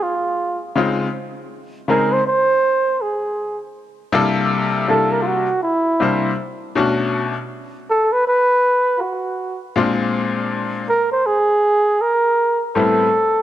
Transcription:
0.03 F4
0.76 C#3 G#3 C4 D#4 F4
1.88 C#3 G#3 C4 D#4 G#4 A#4
2.13 C5
2.27 C5
3.02 G#4
4.12 C3 G3 A#3 D4 E4 A4
4.88 C3 G3 A#3 D4 E4 A4
5.12 A#4
5.22 F4
5.27 F#4
5.63 E4
6.00 C3 G3 A#3 D4 E4 C5
6.75 B2 A3 C#4 D4 F#4
7.90 A4
8.13 B4
8.28 B4
8.98 F4 F#4
9.76 A#2 G#3 C4 D4 F4
10.90 A#4
11.12 C5
11.26 G#4
12.01 A#4
12.75 A2 G3 B3 C4 E4 A4

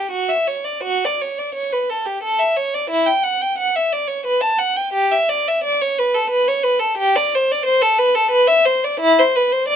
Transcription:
Already playing: G4
0.11 F#4
0.29 E5
0.48 C#5
0.65 D5
0.83 F#4
1.05 D5
1.21 C#5
1.39 D5
1.55 C#5
1.73 B4
1.90 A4
2.06 G4
2.23 A4
2.39 E5
2.57 C#5
2.75 D5
2.90 E4
3.07 G5
3.23 F#5
3.42 G5
3.58 F#5
3.76 E5
3.93 D5
4.08 C#5
4.26 B4
4.41 A5
4.59 F#5
4.77 G5
4.93 G4
5.12 E5
5.30 D5
5.48 E5
5.64 D5
5.81 C#5
5.99 B4
6.15 A4
6.30 B4
6.48 C#5
6.64 B4
6.79 A4
6.98 G4
7.16 D5
7.35 C5
7.52 D5
7.66 C5
7.82 A4
7.98 B4
8.15 A4
8.31 B4
8.48 E5
8.65 C5
8.84 D5
9.00 E4
9.19 C5
9.36 B4
9.53 C5
9.68 D5

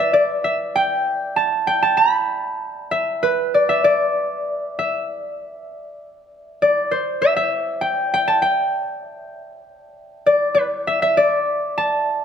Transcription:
Already playing: B4 D5
0.00 E5
0.13 D5
0.44 E5
0.76 G5
1.36 A5
1.67 G5
1.83 A5
1.97 B5
2.91 E5
3.23 B4
3.54 D5
3.69 E5
3.84 D5
4.79 E5
6.62 D5
6.91 C5
7.22 E5
7.37 E5
7.81 G5
8.14 G5
8.28 A5
8.42 G5
10.26 D5
10.55 B4
10.87 E5
11.02 E5
11.17 D5
11.78 A5

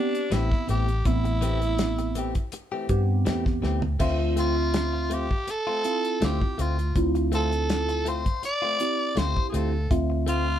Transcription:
Already playing: B3 C4 D4 G4
0.15 closed hi-hat
0.31 A1 E3 A3 C4 E4 G4, snare, closed hi-hat
0.51 muted clean electric guitar stroke, kick, snare
0.67 A1 E3 A3 C4 G4, closed hi-hat
0.88 muted clean electric guitar stroke, closed hi-hat
1.05 A1 B3 C4 E4, kick, closed hi-hat
1.25 muted clean electric guitar stroke, closed hi-hat
1.41 E3 A3 C4 G4, closed hi-hat
1.61 muted clean electric guitar stroke, closed hi-hat
1.79 snare, closed hi-hat
1.98 muted clean electric guitar stroke, closed hi-hat
2.15 E3 A3 C4 G4, closed hi-hat
2.35 muted clean electric guitar stroke, kick, closed hi-hat
2.52 muted clean electric guitar stroke, closed hi-hat
2.72 E3 A3 C4 G4
2.89 G2 B3 C4 G4, muted clean electric guitar stroke, kick, closed hi-hat
3.25 E2 E3 A3 C4 G4, snare, closed hi-hat
3.46 muted clean electric guitar stroke, kick, snare
3.62 D2 E3 A3 C4 G4, snare
3.82 muted clean electric guitar stroke, floor tom
4.00 D2 A3 C4 F4 E5, kick, closed hi-hat, crash
4.19 muted clean electric guitar stroke
4.36 A3 C4 F4, closed hi-hat
4.56 muted clean electric guitar stroke
4.74 snare, closed hi-hat
4.93 muted clean electric guitar stroke
5.10 A3 C4 F4 G4, closed hi-hat
5.30 muted clean electric guitar stroke, kick
5.47 A4, muted clean electric guitar stroke, closed hi-hat
5.67 A3 C4 F4
5.84 C4 E4 F4, muted clean electric guitar stroke, closed hi-hat
6.05 closed hi-hat
6.21 D2 A3 C4 F4 G4, snare, closed hi-hat
6.41 muted clean electric guitar stroke, kick
6.58 D2 A3 C4 F4, closed hi-hat
6.78 muted clean electric guitar stroke, closed hi-hat
6.96 D2 C4 E4 F4, kick, closed hi-hat
7.15 muted clean electric guitar stroke, closed hi-hat
7.32 A3 C4 F4 A4, closed hi-hat
7.52 muted clean electric guitar stroke, closed hi-hat
7.70 snare, closed hi-hat
7.89 muted clean electric guitar stroke, closed hi-hat
8.05 A3 C4 F4 C5, closed hi-hat
8.26 muted clean electric guitar stroke, kick, closed hi-hat
8.43 D5, muted clean electric guitar stroke, closed hi-hat
8.62 A3 C4 F4
8.79 C4 E4 G4, muted clean electric guitar stroke, closed hi-hat
9.16 D2 A3 C4 F4 C5, snare, closed hi-hat
9.36 muted clean electric guitar stroke, kick
9.49 A3 G#4
9.54 D2 C4 F4 A4, closed hi-hat
9.73 muted clean electric guitar stroke
9.91 D2 C4 F4 E5, kick, closed hi-hat
10.10 muted clean electric guitar stroke
10.27 A3 C4 F4, closed hi-hat
10.47 muted clean electric guitar stroke

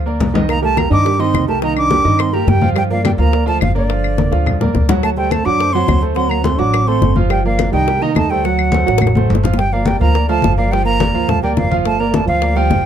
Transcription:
Already playing: D2
0.06 A#3 A#4 D5, high bongo
0.20 C2, high bongo, low bongo, low conga
0.34 D#3 D#4 D#5, high bongo, low conga
0.49 A#3 A#5, high bongo, high conga, claves
0.62 G3 A3 G4 A#4 A5, high conga
0.76 A#3 A#5, high bongo, high conga, claves
0.90 G2 D#3 D4 D#4 D#5 D6, high bongo, high conga
1.05 G3 G4 A#4, high bongo, high conga
1.19 D#3 C4 D#4 D#5 C6, high bongo, high conga
1.33 C2, high bongo, low bongo, high conga, claves
1.47 G3 A3 G4 A#4 A5, high bongo, high conga
1.62 D#3 A#3 D#4 D#5 A#5, high bongo, high conga
1.76 D4 D6, high conga, claves
1.90 G3 G4 A#4, high bongo, high conga
2.05 G2 D#3 D#4 D#5, high bongo, high conga
2.18 C4 C6, high bongo, high conga, claves
2.32 G3 A#3 G4 A#4 A#5, high bongo, high conga
2.46 G2 G3 G5, high bongo, low bongo, high conga
2.62 F3 F4 F5, high bongo, high conga
2.74 G3 G5, high bongo, high conga, claves
2.88 F3 A#3 A#4 D5 F5, high conga
3.04 G3 G5, high bongo, high conga, claves
3.18 D2 F3 A#3 F4 F5 A#5, high bongo, high conga
3.33 A#3 A#4 D5, high bongo, high conga
3.46 F3 A3 F4 F5 A5, high bongo, high conga
3.61 G1 F3 F5, high bongo, low bongo, high conga, claves
3.75 D3 A#3 A#4 D5, high bongo, high conga
3.89 F3 F4 F5, high bongo, high conga
4.04 high conga, claves
4.18 A#3 A#4 D5, high bongo, high conga
4.31 D2 F3 F4 F5, high bongo
4.46 low conga, claves
4.60 A#3 A#4 D5, low bongo, low conga
4.75 D2, low bongo, low conga
4.89 F#3 F#4 F#5, low bongo, low conga
5.03 A3 A5, high bongo, high conga, claves
5.17 G3 A3 A4 C5 G5, high conga
5.31 A3 A5, high bongo, high conga, claves
5.45 F#2 F#3 D4 F#4 F#5 D6, high bongo, high conga
5.60 A3 A4 C5, high bongo, high conga
5.72 F#3 C4 F#4 F#5 C6, high bongo, high conga
5.88 D2, high bongo, low bongo, high conga, claves
6.02 A3 A4 C5, high bongo, high conga
6.15 F#3 C4 F#4 F#5 C6, high bongo, high conga
6.28 A#3 A#5, high conga, claves
6.42 A3 C4 A4 C5 C6, high bongo, high conga
6.56 A1 F#3 D4 F#4 F#5 D6, high bongo, high conga
6.74 high bongo, high conga, claves
6.85 A3 C4 A4 C5 C6, high bongo, high conga
7.02 G1, high bongo, low bongo, high conga
7.16 F3 F4 F5, high bongo, high conga
7.28 G3 G5, high bongo, high conga, claves
7.43 F3 A#3 A#4 D5 F5, high conga
7.59 high bongo, high conga, claves
7.71 C2 D#3 G3 D#4 D#5 G5, high bongo, high conga
7.87 G3 G4 A#4, high bongo, high conga
8.00 D#3 A#3 D#4 D#5 A#5, high bongo, high conga
8.14 D2 A3 A5, high bongo, low bongo, high conga, claves
8.29 G3 A3 A4 C5 G5, high bongo, high conga
8.43 F#3 F#4 F#5, high bongo, high conga
8.58 high conga, claves
8.72 A3 A4 C5, high bongo, high conga
8.86 A1 F#3 F#4 F#5, high bongo, high conga
8.98 high bongo, high conga, claves
9.07 high bongo
9.15 A3 A4 C5, low bongo, high conga
9.30 G1, low conga
9.35 low bongo
9.44 F3 F4 F5, low bongo, low conga
9.54 low bongo
9.58 G3 G5, high bongo, high conga
9.71 F3 A#3 A#4 D5 F5, high conga
9.86 G3 G5, high bongo, high conga
10.00 D2 F3 A#3 F4 F5 A#5, high bongo, high conga
10.14 A#3 A#4 D5, high bongo, high conga
10.28 F3 A3 F4 F5 A5, high bongo, high conga
10.42 G1, high bongo, low bongo, high conga
10.56 F3 A#3 A#4 D5 F5, high bongo, high conga
10.70 F3 G3 F4 F5 G5, high bongo, high conga
10.85 A#3 A#5, high conga
11.00 A#3 A#4 D5, high bongo, high conga
11.14 D2 F3 F4 F5, high bongo, high conga
11.28 A3 A5, high bongo, high conga, low conga
11.41 G3 A#3 A#4 D5 G5, high bongo, high conga
11.56 G1 F3 F5, high bongo, low bongo, high conga
11.71 F3 F4 F5, high bongo, high conga
11.84 A3 A5, high bongo, high conga
11.98 A#3 A#4 D5 A#5, high conga
12.11 A3 A5, high bongo, high conga
12.25 D2 F3 F5, high bongo, high conga
12.29 F4 F5
12.42 A#3 A#4 D5, high bongo, high conga
12.55 F3 G3 F4 F5 G5, high bongo, high conga
12.70 G1, high bongo, low bongo, high conga

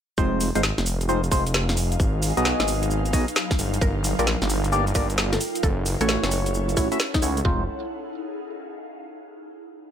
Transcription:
0.18 F1 G#3 C4 D#4 F4 C5 F5, kick, shaker
0.35 D#5
0.41 open hi-hat, shaker
0.55 G#1 G#3 C4 D#4 F4 C5, closed hi-hat, shaker
0.63 snare, shaker
0.68 G#5
0.78 F1, snare, shaker
0.86 open hi-hat, shaker
1.01 closed hi-hat, shaker
1.09 G#3 C4 D#4 F4 C5, shaker
1.24 closed hi-hat, shaker
1.32 F1 G#3 C4 D#4 F4 C5, kick, open hi-hat, shaker
1.47 closed hi-hat, shaker
1.54 snare, shaker
1.69 snare, closed hi-hat, shaker
1.77 open hi-hat, shaker
1.92 closed hi-hat, shaker
2.00 G#1 F#3, kick, shaker
2.15 B4
2.23 open hi-hat, shaker
2.37 B1 B3 D#4 F#4 G#4 D#5, closed hi-hat, shaker
2.45 snare, shaker
2.60 G#1, snare, closed hi-hat, shaker
2.68 open hi-hat, shaker
2.83 closed hi-hat, shaker
2.91 shaker
3.06 closed hi-hat, shaker
3.13 B1 B3 D#4 F#4 G#4 D#5, kick, open hi-hat, shaker
3.28 closed hi-hat, shaker
3.36 snare, shaker
3.51 kick, snare, closed hi-hat, shaker
3.59 G1 F4, open hi-hat, shaker
3.74 A#4, closed hi-hat, shaker
3.81 G1 A#4 G5, kick, shaker
4.04 open hi-hat, shaker
4.19 A#1 A#3 D4 F4 G4 A#4 D5, closed hi-hat, shaker
4.27 snare, shaker
4.42 G1, snare, shaker
4.50 open hi-hat, shaker
4.64 closed hi-hat, shaker
4.72 A#3 D4 F4 G4 D5, shaker
4.87 closed hi-hat, shaker
4.95 G1 A#3 D4 F4 G4 A#4 D5, kick, open hi-hat, shaker
5.10 closed hi-hat, shaker
5.18 snare, shaker
5.33 A4, snare, closed hi-hat, shaker
5.40 C#4 E4 C#5, open hi-hat, shaker
5.48 A4
5.55 closed hi-hat, shaker
5.63 F#1 A4, kick, shaker
5.86 open hi-hat, shaker
6.01 A1 A3 C#4 E4 F#4 A4 C#5 F#5, closed hi-hat, shaker
6.09 snare, shaker
6.23 F#1, snare, closed hi-hat, shaker
6.31 open hi-hat, shaker
6.46 closed hi-hat, shaker
6.54 shaker
6.69 closed hi-hat, shaker
6.77 A1 A3 C#4 E4 F#4 C#5, kick, open hi-hat, shaker
6.92 A3 C#4 E4 F#4 E5, closed hi-hat, shaker
7.00 snare, shaker
7.14 D#4, kick, snare, closed hi-hat, shaker
7.22 C#2 A3 C#4 E4 F#4 C#5, open hi-hat, shaker
7.37 closed hi-hat, shaker
7.45 F1 G#3 C4 D#4 F4 C5, kick, floor tom
7.54 G#4
7.61 F5

